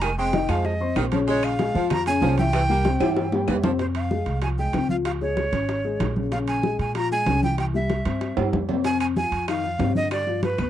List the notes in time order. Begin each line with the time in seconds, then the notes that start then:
Already playing: F1 G#3 G#4 G#5
0.02 D#3 G#5, high bongo, high conga, high timbale, claves
0.18 G#3 C4 C5 G5 C6, high conga
0.33 D#3 D#4 D#5, high bongo, high conga, high timbale, low timbale
0.49 F2 F3 G#3 G#4 F5 G#5, high bongo, high conga, high timbale, claves
0.65 D#5, high bongo, high conga
0.81 C4 C5 C6, high bongo, high conga
0.96 A#1 D#3, high bongo, low bongo, high conga, high timbale, low timbale, claves
1.12 C#3 F3 C#4 C#5, high bongo, high conga, high timbale
1.28 C#3 G#3 C#4 C#5, high bongo, high conga
1.43 F5, high conga, high timbale, claves
1.59 G#3 G#4 G#5, high bongo, high conga, high timbale, low timbale
1.75 F2 F3 F4 F5, high bongo, high conga
1.90 A#5, high bongo, high conga, low conga, high timbale, claves
2.06 C#3 C#4 C#5 G#5, high bongo, high conga, high timbale
2.22 C2 F3, high bongo, low bongo, high conga, low timbale
2.38 E3 E4 E5 G5, high bongo, high conga, high timbale
2.53 E3, high bongo, high conga, high timbale, claves
2.69 G3 A#3 G4 G5, high conga
2.85 C3 C4 C5, high bongo, high conga, high timbale, low timbale
3.00 G2 E3 G3 E4 E5, high bongo, high conga, high timbale, claves
3.16 high bongo, high conga, high timbale
3.32 G3 G4 G5, low bongo, high conga, low timbale
3.48 F2 E3, low bongo, high conga, low timbale, claves
3.63 C3 F3 C4 C5, low bongo, high conga, low timbale
3.79 C3 C4 C5, high bongo, high conga, high timbale
3.95 F5, high conga, high timbale
4.11 G#3 G#4, high bongo, high conga
4.26 C2, high conga, high timbale
4.42 F3 F4 G#5, high bongo, high conga, high timbale
4.58 G#3 G#4 G5, high conga
4.73 C#2 C3 C4, high bongo, low bongo, high conga, high timbale
4.89 F3 F4 F5, high conga
5.05 F5, high bongo, high conga, high timbale
5.21 G#3 G#4 C#5, high bongo, high conga
5.37 high bongo, high conga, high timbale
5.52 G#1 C#4 C#5, high bongo, high conga, high timbale
5.68 high bongo, high conga, high timbale
5.84 G#3 G#4, high conga
6.00 A#1, high bongo, low bongo, high conga, high timbale
6.16 C#3 C#4, high bongo, high conga
6.32 C#3 C#4 F5, high bongo, high conga, high timbale
6.48 G#5, high conga, high timbale
6.63 G#3 G#4, high bongo, high conga
6.79 A#2 G#5, high conga, high timbale
6.95 F3 F4 A#5, high bongo, high conga, high timbale
7.11 G#3 G#4 G#5, high conga
7.26 C2 C#3 C#4, high bongo, low bongo, high conga, high timbale
7.43 E3 E4 G5, high conga
7.58 G5, high bongo, high conga, high timbale
7.74 G3 G4 E5, high bongo, high conga
7.90 high bongo, high conga, high timbale
8.05 G2 C4 C5, high bongo, high conga, high timbale
8.21 high bongo, high conga, high timbale
8.37 G2 G3 G4, high conga, high timbale
8.53 F2, high bongo, low bongo, high conga, low timbale
8.69 C3 C4, high bongo, high conga, low timbale
8.84 C3 C4 G#5, high bongo, high conga, high timbale
9.00 G#5, high conga, high timbale, claves
9.16 F3 F4 G#5, high bongo, high conga
9.32 F2, high conga, high timbale
9.48 D#3 D#4 F5, high bongo, high conga, high timbale, claves
9.63 F3 F4, high conga
9.79 G2 C3 C4, high bongo, low bongo, high conga, high timbale, low timbale
9.95 D3 D4 D#5, high conga
10.11 D5, high bongo, high conga, high timbale, claves
10.27 F3 F4, high bongo, high conga
10.43 B4, high bongo, high conga, high timbale
10.58 D2 B3 B4, high bongo, high conga, high timbale, claves